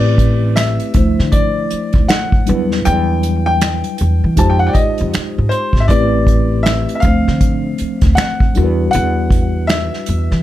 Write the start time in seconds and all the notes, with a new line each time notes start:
Already playing: A1 A3 C4 E4 G4 B4 D5
0.18 kick, closed hi-hat
0.56 E5, finger snap, snare, closed hi-hat
0.80 closed hi-hat
0.94 D2 F3 A3 D4 E4 C5, kick, closed hi-hat
1.19 D3, snare
1.32 D5, kick, closed hi-hat
1.70 muted upright bass stroke, closed hi-hat
1.93 D2, kick, closed hi-hat
2.08 F#5, finger snap, snare, closed hi-hat
2.32 kick
2.46 E2 F#3 G3 D4 E4 B4, closed hi-hat
2.71 snare
2.85 E2 G5, closed hi-hat
3.23 closed hi-hat
3.46 G5
3.61 finger snap, snare, closed hi-hat
3.84 closed hi-hat
3.98 E2, closed hi-hat
4.24 E3
4.36 F2 G#3 D#4 F4 G4 C5 A5, kick, closed hi-hat
4.50 G5
4.59 F#5
4.67 D5 G5
4.73 D#5, muted upright bass stroke, kick, closed hi-hat
4.98 F2, closed hi-hat
5.14 finger snap, muted upright bass stroke, snare, closed hi-hat
5.38 G#2
5.49 C5, closed hi-hat
5.73 G#1, kick, snare
5.80 E5
5.88 A1 A3 C4 E4 G4 B4 D5, kick, closed hi-hat
6.27 kick, closed hi-hat
6.63 E5, finger snap, snare, closed hi-hat
6.89 closed hi-hat
6.95 E5
7.00 A3 D4 F5, kick, closed hi-hat
7.04 D2 F3 C4 C5
7.27 D3, snare
7.41 kick, closed hi-hat
7.78 muted upright bass stroke, closed hi-hat
8.01 D2, kick, snare, closed hi-hat
8.15 F#5, finger snap, snare, closed hi-hat
8.40 kick
8.54 E2 G3 D4 E4 F#4 A#4, closed hi-hat
8.64 B4
8.91 E2 F#5, closed hi-hat
9.30 kick, closed hi-hat
9.67 E5, finger snap, snare, closed hi-hat
9.94 snare
10.06 E2, closed hi-hat
10.31 E3, snare